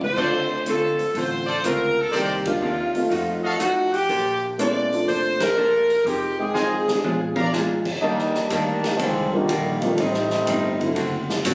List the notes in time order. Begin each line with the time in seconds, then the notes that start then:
Already playing: E2
0.01 C5, mid tom
0.15 D2 D3 A3 C4 D4 F4 A4 C5 D5, kick, crash
0.20 F4
0.66 D3 A3 C4 F4 A4, closed hi-hat
0.99 muted upright bass stroke, open hi-hat
1.14 A1 D3 A3 C4 F4 C5, open hi-hat
1.46 F4 A4 C5 D5
1.63 C#2 D3 A3 C4 F4 A#4, cross-stick, closed hi-hat
1.99 A4
2.11 C2 C3 D#3 A#3 D4 D#4 G4 A#4 C5 D5, open hi-hat
2.45 A#3 D4 D#4 F4 G4, kick, ride
2.62 D#2 C3 D#3 A#3 D4
2.95 A3 C4 D#4 F4, open hi-hat
3.10 F2 F3 A3 D#4 F#4, open hi-hat
3.43 F#4 A4 D#5 F5
3.59 F2 F3 A3 D#4 F#4, cross-stick, closed hi-hat
3.94 G4, open hi-hat
4.09 A#1 A#3 D4 A4 C5, open hi-hat
4.58 G#3 A#3 B3 C#4 D4 E4 A4 C5 D5, closed hi-hat
4.91 A3 C4 D4 F4, open hi-hat
5.06 F1 A#3 D4 A4 C5, open hi-hat
5.40 A#4, snare, ride
5.57 A#3 D4 A4 C5
5.90 open hi-hat
6.05 F1 F3 C4 D#4 G4 G#4, open hi-hat
6.39 G#3 C4 D#4 G#4 G5
6.54 F3 C4 D#4 G#4 C5 D#5 F5 G#5, snare
6.88 G#3 C4 D4 G4, muted upright bass stroke, snare
7.03 A#1 A#2 G#3 D4 F4, high tom
7.36 A#4 D5 F5 A#5, high tom
7.52 A#2 G#3 D4 F4, snare
7.85 muted upright bass stroke, kick, crash
8.01 D#2 D#3 G3 A#3 D4 D#4
8.18 snare
8.34 snare
8.50 D2 D#3 G3 A#3 D4 D#4, hi-hat pedal, ride
8.84 snare, ride
8.97 C2 D3 D#3 F3 G3 B3, ride
9.01 G#3 A#3 C4 D4
9.33 D3 D#3 G3 A#3 D4 F4
9.48 A#1 D#3 G3 A#3 D4, hi-hat pedal, ride
9.82 D#3 G3 A3 A#3 C4 D4 F4, ride
9.93 A1 D4
9.98 A2 G3 A3 C4 D#4, ride
10.14 snare
10.30 snare
10.46 G1 A2 G3 C4 D#4, hi-hat pedal, ride
10.80 D3 F#3 A3 C4 E4, kick, ride
10.95 F#1 D3 A3 C4 F#4, ride
11.29 snare
11.45 A1 D3 A3 C4 F#4, hi-hat pedal, ride